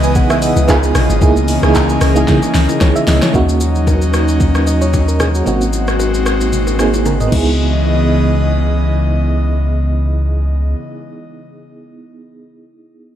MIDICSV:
0, 0, Header, 1, 6, 480
1, 0, Start_track
1, 0, Tempo, 530973
1, 1100, Time_signature, 4, 2, 24, 8
1, 11892, End_track
2, 0, Start_track
2, 0, Title_t, "FM electric piano"
2, 0, Program_c, 0, 5
2, 0, Control_c, 0, 64, 127
2, 0, Note_on_c, 0, 59, 92
2, 0, Note_on_c, 0, 63, 80
2, 0, Note_on_c, 0, 64, 83
2, 0, Note_on_c, 0, 68, 103
2, 0, Note_on_c, 0, 71, 99
2, 33, Note_on_c, 0, 80, 69
2, 135, Note_off_c, 0, 80, 0
2, 141, Note_on_c, 0, 78, 74
2, 266, Note_off_c, 0, 78, 0
2, 273, Note_on_c, 0, 76, 77
2, 375, Note_off_c, 0, 76, 0
2, 381, Note_on_c, 0, 75, 76
2, 506, Note_off_c, 0, 75, 0
2, 514, Note_off_c, 0, 71, 0
2, 514, Note_on_c, 0, 71, 70
2, 611, Note_off_c, 0, 59, 0
2, 611, Note_on_c, 0, 59, 92
2, 617, Note_off_c, 0, 63, 0
2, 617, Note_on_c, 0, 63, 86
2, 624, Note_on_c, 0, 65, 82
2, 632, Note_off_c, 0, 68, 0
2, 632, Note_on_c, 0, 68, 107
2, 633, Control_c, 0, 64, 0
2, 635, Note_off_c, 0, 64, 0
2, 741, Note_off_c, 0, 71, 0
2, 774, Control_c, 0, 64, 127
2, 1009, Note_off_c, 0, 59, 0
2, 1012, Note_off_c, 0, 63, 0
2, 1016, Note_off_c, 0, 65, 0
2, 1020, Note_off_c, 0, 68, 0
2, 1092, Note_on_c, 0, 58, 90
2, 1099, Note_on_c, 0, 63, 83
2, 1105, Note_on_c, 0, 64, 83
2, 1111, Control_c, 0, 64, 0
2, 1112, Note_on_c, 0, 68, 102
2, 1251, Control_c, 0, 64, 127
2, 1389, Note_off_c, 0, 58, 0
2, 1392, Note_off_c, 0, 63, 0
2, 1396, Note_off_c, 0, 64, 0
2, 1399, Note_off_c, 0, 68, 0
2, 1462, Note_on_c, 0, 58, 89
2, 1471, Note_on_c, 0, 63, 80
2, 1477, Note_on_c, 0, 64, 81
2, 1485, Note_on_c, 0, 68, 101
2, 1842, Note_off_c, 0, 58, 0
2, 1846, Note_off_c, 0, 63, 0
2, 1849, Note_off_c, 0, 64, 0
2, 1853, Note_off_c, 0, 68, 0
2, 1943, Note_on_c, 0, 58, 87
2, 1950, Note_on_c, 0, 63, 84
2, 1957, Note_on_c, 0, 64, 80
2, 1964, Note_on_c, 0, 68, 100
2, 2541, Note_on_c, 0, 73, 68
2, 2666, Note_off_c, 0, 73, 0
2, 2672, Note_on_c, 0, 76, 74
2, 2711, Note_off_c, 0, 58, 0
2, 2714, Note_off_c, 0, 63, 0
2, 2718, Note_off_c, 0, 64, 0
2, 2721, Note_off_c, 0, 68, 0
2, 2775, Note_off_c, 0, 76, 0
2, 2780, Note_on_c, 0, 75, 70
2, 2905, Note_off_c, 0, 75, 0
2, 2914, Note_on_c, 0, 73, 68
2, 3009, Note_on_c, 0, 58, 83
2, 3017, Note_on_c, 0, 61, 77
2, 3024, Note_on_c, 0, 63, 75
2, 3032, Note_on_c, 0, 66, 92
2, 3033, Control_c, 0, 64, 0
2, 3141, Note_off_c, 0, 73, 0
2, 3184, Control_c, 0, 64, 127
2, 3788, Note_off_c, 0, 58, 0
2, 3791, Note_off_c, 0, 61, 0
2, 3795, Note_off_c, 0, 63, 0
2, 3799, Note_off_c, 0, 66, 0
2, 4222, Note_on_c, 0, 75, 62
2, 4347, Note_off_c, 0, 75, 0
2, 4352, Note_on_c, 0, 73, 70
2, 4580, Note_off_c, 0, 73, 0
2, 4593, Note_on_c, 0, 70, 69
2, 4695, Note_off_c, 0, 70, 0
2, 4701, Note_on_c, 0, 68, 69
2, 4826, Note_off_c, 0, 68, 0
2, 4832, Note_on_c, 0, 66, 61
2, 4931, Note_on_c, 0, 58, 83
2, 4938, Note_on_c, 0, 60, 77
2, 4942, Note_off_c, 0, 66, 0
2, 4945, Note_on_c, 0, 63, 75
2, 4953, Control_c, 0, 64, 0
2, 4953, Note_on_c, 0, 66, 96
2, 5094, Control_c, 0, 64, 127
2, 5709, Note_off_c, 0, 58, 0
2, 5712, Note_off_c, 0, 60, 0
2, 5716, Note_off_c, 0, 63, 0
2, 5719, Note_off_c, 0, 66, 0
2, 6130, Note_on_c, 0, 58, 82
2, 6137, Note_on_c, 0, 60, 71
2, 6144, Note_on_c, 0, 63, 75
2, 6151, Note_on_c, 0, 68, 85
2, 6382, Note_on_c, 0, 70, 61
2, 6507, Note_off_c, 0, 70, 0
2, 6514, Note_on_c, 0, 75, 70
2, 6578, Note_on_c, 0, 59, 78
2, 6596, Note_off_c, 0, 63, 0
2, 6607, Note_on_c, 0, 63, 70
2, 6615, Note_off_c, 0, 58, 0
2, 6616, Note_off_c, 0, 75, 0
2, 6619, Note_off_c, 0, 60, 0
2, 6626, Note_off_c, 0, 68, 0
2, 6633, Control_c, 0, 64, 0
2, 6635, Note_on_c, 0, 64, 75
2, 6664, Note_on_c, 0, 68, 87
2, 6728, Control_c, 0, 64, 127
2, 6871, Control_c, 0, 64, 0
2, 7046, Control_c, 0, 64, 127
2, 9674, Note_off_c, 0, 59, 0
2, 9703, Note_off_c, 0, 63, 0
2, 9732, Note_off_c, 0, 64, 0
2, 9761, Note_off_c, 0, 68, 0
2, 11892, End_track
3, 0, Start_track
3, 0, Title_t, "Analog synth pad"
3, 0, Program_c, 1, 89
3, 0, Note_on_c, 1, 49, 83
3, 0, Note_on_c, 1, 52, 92
3, 0, Note_on_c, 1, 56, 81
3, 0, Note_on_c, 1, 59, 76
3, 0, Note_on_c, 1, 75, 74
3, 606, Note_off_c, 1, 49, 0
3, 606, Note_off_c, 1, 52, 0
3, 606, Note_off_c, 1, 59, 0
3, 621, Note_on_c, 1, 49, 85
3, 621, Note_on_c, 1, 59, 72
3, 622, Note_on_c, 1, 65, 87
3, 1065, Note_off_c, 1, 56, 0
3, 1096, Note_off_c, 1, 59, 0
3, 1096, Note_off_c, 1, 65, 0
3, 1100, Note_on_c, 1, 52, 73
3, 1101, Note_on_c, 1, 61, 74
3, 1101, Note_on_c, 1, 68, 74
3, 1102, Note_on_c, 1, 70, 89
3, 2984, Note_off_c, 1, 75, 0
3, 2997, Note_off_c, 1, 49, 0
3, 3001, Note_off_c, 1, 52, 0
3, 3001, Note_off_c, 1, 61, 0
3, 3001, Note_off_c, 1, 68, 0
3, 3002, Note_off_c, 1, 70, 0
3, 3023, Note_on_c, 1, 63, 83
3, 3024, Note_on_c, 1, 61, 71
3, 3025, Note_on_c, 1, 54, 78
3, 4923, Note_off_c, 1, 61, 0
3, 4923, Note_off_c, 1, 63, 0
3, 4924, Note_off_c, 1, 54, 0
3, 4941, Note_on_c, 1, 56, 77
3, 4941, Note_on_c, 1, 60, 71
3, 4941, Note_on_c, 1, 66, 87
3, 6604, Note_off_c, 1, 56, 0
3, 6604, Note_off_c, 1, 60, 0
3, 6604, Note_off_c, 1, 66, 0
3, 6620, Note_on_c, 1, 52, 70
3, 6621, Note_on_c, 1, 56, 72
3, 6621, Note_on_c, 1, 75, 86
3, 6622, Note_on_c, 1, 49, 77
3, 6622, Note_on_c, 1, 59, 73
3, 9717, Note_off_c, 1, 52, 0
3, 9718, Note_off_c, 1, 49, 0
3, 9718, Note_off_c, 1, 56, 0
3, 9718, Note_off_c, 1, 59, 0
3, 9718, Note_off_c, 1, 75, 0
3, 11892, End_track
4, 0, Start_track
4, 0, Title_t, "Log drum bass"
4, 0, Program_c, 2, 39
4, 0, Note_on_c, 2, 37, 99
4, 140, Note_on_c, 2, 35, 103
4, 154, Note_off_c, 2, 37, 0
4, 479, Note_off_c, 2, 35, 0
4, 510, Note_on_c, 2, 37, 89
4, 609, Note_off_c, 2, 37, 0
4, 623, Note_on_c, 2, 37, 114
4, 840, Note_off_c, 2, 37, 0
4, 859, Note_on_c, 2, 35, 99
4, 980, Note_off_c, 2, 35, 0
4, 993, Note_on_c, 2, 32, 92
4, 1091, Note_off_c, 2, 32, 0
4, 1100, Note_on_c, 2, 37, 108
4, 1438, Note_off_c, 2, 37, 0
4, 1473, Note_on_c, 2, 37, 92
4, 1789, Note_off_c, 2, 37, 0
4, 1820, Note_on_c, 2, 37, 98
4, 2039, Note_off_c, 2, 37, 0
4, 2061, Note_on_c, 2, 49, 110
4, 2181, Note_off_c, 2, 49, 0
4, 2301, Note_on_c, 2, 37, 90
4, 2421, Note_off_c, 2, 37, 0
4, 2543, Note_on_c, 2, 37, 95
4, 2662, Note_off_c, 2, 37, 0
4, 2782, Note_on_c, 2, 37, 100
4, 2901, Note_off_c, 2, 37, 0
4, 11892, End_track
5, 0, Start_track
5, 0, Title_t, "Sub bass"
5, 0, Program_c, 3, 38
5, 3021, Note_on_c, 3, 39, 86
5, 4904, Note_off_c, 3, 39, 0
5, 4941, Note_on_c, 3, 32, 83
5, 6587, Note_off_c, 3, 32, 0
5, 6620, Note_on_c, 3, 37, 97
5, 9716, Note_off_c, 3, 37, 0
5, 11892, End_track
6, 0, Start_track
6, 0, Title_t, "Drums"
6, 30, Note_on_c, 9, 82, 64
6, 120, Note_off_c, 9, 82, 0
6, 138, Note_on_c, 9, 82, 75
6, 140, Note_on_c, 9, 36, 127
6, 141, Note_on_c, 9, 64, 80
6, 228, Note_off_c, 9, 82, 0
6, 231, Note_off_c, 9, 36, 0
6, 232, Note_off_c, 9, 64, 0
6, 271, Note_on_c, 9, 82, 55
6, 273, Note_on_c, 9, 37, 102
6, 361, Note_off_c, 9, 82, 0
6, 363, Note_off_c, 9, 37, 0
6, 379, Note_on_c, 9, 46, 54
6, 379, Note_on_c, 9, 82, 94
6, 470, Note_off_c, 9, 46, 0
6, 470, Note_off_c, 9, 82, 0
6, 511, Note_on_c, 9, 61, 73
6, 511, Note_on_c, 9, 82, 57
6, 601, Note_off_c, 9, 61, 0
6, 601, Note_off_c, 9, 82, 0
6, 619, Note_on_c, 9, 60, 83
6, 619, Note_on_c, 9, 82, 78
6, 622, Note_on_c, 9, 36, 94
6, 622, Note_on_c, 9, 39, 88
6, 710, Note_off_c, 9, 60, 0
6, 710, Note_off_c, 9, 82, 0
6, 712, Note_off_c, 9, 36, 0
6, 712, Note_off_c, 9, 39, 0
6, 752, Note_on_c, 9, 82, 57
6, 843, Note_off_c, 9, 82, 0
6, 859, Note_on_c, 9, 37, 109
6, 860, Note_on_c, 9, 46, 50
6, 860, Note_on_c, 9, 60, 51
6, 860, Note_on_c, 9, 61, 72
6, 860, Note_on_c, 9, 64, 74
6, 860, Note_on_c, 9, 82, 87
6, 949, Note_off_c, 9, 37, 0
6, 950, Note_off_c, 9, 46, 0
6, 950, Note_off_c, 9, 82, 0
6, 951, Note_off_c, 9, 60, 0
6, 951, Note_off_c, 9, 61, 0
6, 951, Note_off_c, 9, 64, 0
6, 991, Note_on_c, 9, 61, 75
6, 993, Note_on_c, 9, 82, 62
6, 1081, Note_off_c, 9, 61, 0
6, 1083, Note_off_c, 9, 82, 0
6, 1100, Note_on_c, 9, 36, 120
6, 1100, Note_on_c, 9, 64, 77
6, 1100, Note_on_c, 9, 82, 75
6, 1190, Note_off_c, 9, 36, 0
6, 1190, Note_off_c, 9, 64, 0
6, 1190, Note_off_c, 9, 82, 0
6, 1233, Note_on_c, 9, 82, 60
6, 1323, Note_off_c, 9, 82, 0
6, 1339, Note_on_c, 9, 46, 62
6, 1339, Note_on_c, 9, 82, 106
6, 1430, Note_off_c, 9, 46, 0
6, 1430, Note_off_c, 9, 82, 0
6, 1472, Note_on_c, 9, 82, 45
6, 1476, Note_on_c, 9, 37, 105
6, 1562, Note_off_c, 9, 82, 0
6, 1566, Note_off_c, 9, 37, 0
6, 1579, Note_on_c, 9, 36, 77
6, 1579, Note_on_c, 9, 39, 94
6, 1580, Note_on_c, 9, 60, 75
6, 1581, Note_on_c, 9, 82, 81
6, 1669, Note_off_c, 9, 39, 0
6, 1670, Note_off_c, 9, 36, 0
6, 1671, Note_off_c, 9, 60, 0
6, 1671, Note_off_c, 9, 82, 0
6, 1711, Note_on_c, 9, 82, 54
6, 1801, Note_off_c, 9, 82, 0
6, 1818, Note_on_c, 9, 46, 56
6, 1818, Note_on_c, 9, 82, 95
6, 1819, Note_on_c, 9, 37, 111
6, 1909, Note_off_c, 9, 46, 0
6, 1909, Note_off_c, 9, 82, 0
6, 1910, Note_off_c, 9, 37, 0
6, 1951, Note_on_c, 9, 82, 59
6, 2041, Note_off_c, 9, 82, 0
6, 2060, Note_on_c, 9, 38, 67
6, 2060, Note_on_c, 9, 82, 70
6, 2061, Note_on_c, 9, 36, 127
6, 2062, Note_on_c, 9, 64, 77
6, 2150, Note_off_c, 9, 82, 0
6, 2151, Note_off_c, 9, 36, 0
6, 2151, Note_off_c, 9, 38, 0
6, 2153, Note_off_c, 9, 64, 0
6, 2192, Note_on_c, 9, 60, 64
6, 2192, Note_on_c, 9, 82, 59
6, 2282, Note_off_c, 9, 82, 0
6, 2283, Note_off_c, 9, 60, 0
6, 2300, Note_on_c, 9, 38, 81
6, 2300, Note_on_c, 9, 46, 55
6, 2300, Note_on_c, 9, 82, 94
6, 2390, Note_off_c, 9, 38, 0
6, 2391, Note_off_c, 9, 46, 0
6, 2391, Note_off_c, 9, 82, 0
6, 2431, Note_on_c, 9, 61, 70
6, 2432, Note_on_c, 9, 82, 56
6, 2522, Note_off_c, 9, 61, 0
6, 2522, Note_off_c, 9, 82, 0
6, 2540, Note_on_c, 9, 38, 91
6, 2540, Note_on_c, 9, 60, 80
6, 2540, Note_on_c, 9, 82, 78
6, 2543, Note_on_c, 9, 36, 92
6, 2630, Note_off_c, 9, 38, 0
6, 2630, Note_off_c, 9, 60, 0
6, 2630, Note_off_c, 9, 82, 0
6, 2633, Note_off_c, 9, 36, 0
6, 2674, Note_on_c, 9, 82, 57
6, 2765, Note_off_c, 9, 82, 0
6, 2779, Note_on_c, 9, 60, 52
6, 2779, Note_on_c, 9, 61, 73
6, 2779, Note_on_c, 9, 64, 74
6, 2780, Note_on_c, 9, 38, 110
6, 2780, Note_on_c, 9, 46, 52
6, 2780, Note_on_c, 9, 82, 89
6, 2870, Note_off_c, 9, 38, 0
6, 2870, Note_off_c, 9, 46, 0
6, 2870, Note_off_c, 9, 60, 0
6, 2870, Note_off_c, 9, 61, 0
6, 2870, Note_off_c, 9, 64, 0
6, 2870, Note_off_c, 9, 82, 0
6, 2911, Note_on_c, 9, 61, 76
6, 2912, Note_on_c, 9, 38, 100
6, 2913, Note_on_c, 9, 82, 63
6, 3001, Note_off_c, 9, 61, 0
6, 3003, Note_off_c, 9, 38, 0
6, 3004, Note_off_c, 9, 82, 0
6, 3020, Note_on_c, 9, 36, 112
6, 3020, Note_on_c, 9, 64, 69
6, 3020, Note_on_c, 9, 82, 74
6, 3111, Note_off_c, 9, 36, 0
6, 3111, Note_off_c, 9, 64, 0
6, 3111, Note_off_c, 9, 82, 0
6, 3154, Note_on_c, 9, 82, 60
6, 3244, Note_off_c, 9, 82, 0
6, 3259, Note_on_c, 9, 82, 104
6, 3261, Note_on_c, 9, 61, 50
6, 3349, Note_off_c, 9, 82, 0
6, 3351, Note_off_c, 9, 61, 0
6, 3392, Note_on_c, 9, 82, 42
6, 3483, Note_off_c, 9, 82, 0
6, 3500, Note_on_c, 9, 36, 73
6, 3502, Note_on_c, 9, 82, 70
6, 3503, Note_on_c, 9, 60, 72
6, 3590, Note_off_c, 9, 36, 0
6, 3592, Note_off_c, 9, 82, 0
6, 3594, Note_off_c, 9, 60, 0
6, 3631, Note_on_c, 9, 82, 51
6, 3721, Note_off_c, 9, 82, 0
6, 3739, Note_on_c, 9, 37, 104
6, 3739, Note_on_c, 9, 82, 89
6, 3829, Note_off_c, 9, 82, 0
6, 3830, Note_off_c, 9, 37, 0
6, 3871, Note_on_c, 9, 82, 56
6, 3961, Note_off_c, 9, 82, 0
6, 3980, Note_on_c, 9, 82, 69
6, 3981, Note_on_c, 9, 36, 117
6, 3984, Note_on_c, 9, 64, 74
6, 4070, Note_off_c, 9, 82, 0
6, 4072, Note_off_c, 9, 36, 0
6, 4074, Note_off_c, 9, 64, 0
6, 4112, Note_on_c, 9, 60, 57
6, 4112, Note_on_c, 9, 82, 56
6, 4114, Note_on_c, 9, 37, 91
6, 4202, Note_off_c, 9, 82, 0
6, 4203, Note_off_c, 9, 60, 0
6, 4204, Note_off_c, 9, 37, 0
6, 4221, Note_on_c, 9, 82, 84
6, 4311, Note_off_c, 9, 82, 0
6, 4352, Note_on_c, 9, 61, 64
6, 4353, Note_on_c, 9, 82, 51
6, 4442, Note_off_c, 9, 61, 0
6, 4443, Note_off_c, 9, 82, 0
6, 4461, Note_on_c, 9, 82, 74
6, 4462, Note_on_c, 9, 60, 72
6, 4463, Note_on_c, 9, 36, 84
6, 4552, Note_off_c, 9, 60, 0
6, 4552, Note_off_c, 9, 82, 0
6, 4554, Note_off_c, 9, 36, 0
6, 4595, Note_on_c, 9, 82, 55
6, 4685, Note_off_c, 9, 82, 0
6, 4700, Note_on_c, 9, 37, 103
6, 4701, Note_on_c, 9, 60, 49
6, 4701, Note_on_c, 9, 61, 70
6, 4701, Note_on_c, 9, 64, 68
6, 4701, Note_on_c, 9, 82, 79
6, 4790, Note_off_c, 9, 37, 0
6, 4791, Note_off_c, 9, 82, 0
6, 4792, Note_off_c, 9, 60, 0
6, 4792, Note_off_c, 9, 61, 0
6, 4792, Note_off_c, 9, 64, 0
6, 4834, Note_on_c, 9, 82, 56
6, 4924, Note_off_c, 9, 82, 0
6, 4941, Note_on_c, 9, 64, 69
6, 4941, Note_on_c, 9, 82, 73
6, 5031, Note_off_c, 9, 64, 0
6, 5031, Note_off_c, 9, 82, 0
6, 5074, Note_on_c, 9, 82, 57
6, 5164, Note_off_c, 9, 82, 0
6, 5180, Note_on_c, 9, 61, 50
6, 5180, Note_on_c, 9, 82, 101
6, 5270, Note_off_c, 9, 82, 0
6, 5271, Note_off_c, 9, 61, 0
6, 5312, Note_on_c, 9, 82, 40
6, 5316, Note_on_c, 9, 37, 93
6, 5402, Note_off_c, 9, 82, 0
6, 5406, Note_off_c, 9, 37, 0
6, 5419, Note_on_c, 9, 60, 71
6, 5422, Note_on_c, 9, 82, 72
6, 5510, Note_off_c, 9, 60, 0
6, 5513, Note_off_c, 9, 82, 0
6, 5552, Note_on_c, 9, 82, 52
6, 5642, Note_off_c, 9, 82, 0
6, 5660, Note_on_c, 9, 82, 89
6, 5661, Note_on_c, 9, 37, 102
6, 5750, Note_off_c, 9, 82, 0
6, 5751, Note_off_c, 9, 37, 0
6, 5792, Note_on_c, 9, 82, 57
6, 5883, Note_off_c, 9, 82, 0
6, 5900, Note_on_c, 9, 64, 73
6, 5900, Note_on_c, 9, 82, 67
6, 5990, Note_off_c, 9, 64, 0
6, 5990, Note_off_c, 9, 82, 0
6, 6029, Note_on_c, 9, 60, 58
6, 6032, Note_on_c, 9, 82, 52
6, 6120, Note_off_c, 9, 60, 0
6, 6122, Note_off_c, 9, 82, 0
6, 6139, Note_on_c, 9, 37, 92
6, 6141, Note_on_c, 9, 82, 84
6, 6230, Note_off_c, 9, 37, 0
6, 6231, Note_off_c, 9, 82, 0
6, 6270, Note_on_c, 9, 61, 69
6, 6271, Note_on_c, 9, 82, 53
6, 6360, Note_off_c, 9, 61, 0
6, 6361, Note_off_c, 9, 82, 0
6, 6379, Note_on_c, 9, 48, 52
6, 6379, Note_on_c, 9, 60, 75
6, 6379, Note_on_c, 9, 82, 70
6, 6469, Note_off_c, 9, 60, 0
6, 6470, Note_off_c, 9, 48, 0
6, 6470, Note_off_c, 9, 82, 0
6, 6512, Note_on_c, 9, 47, 60
6, 6513, Note_on_c, 9, 82, 52
6, 6602, Note_off_c, 9, 47, 0
6, 6603, Note_off_c, 9, 82, 0
6, 6619, Note_on_c, 9, 49, 83
6, 6619, Note_on_c, 9, 64, 81
6, 6620, Note_on_c, 9, 36, 98
6, 6709, Note_off_c, 9, 64, 0
6, 6710, Note_off_c, 9, 36, 0
6, 6710, Note_off_c, 9, 49, 0
6, 11892, End_track
0, 0, End_of_file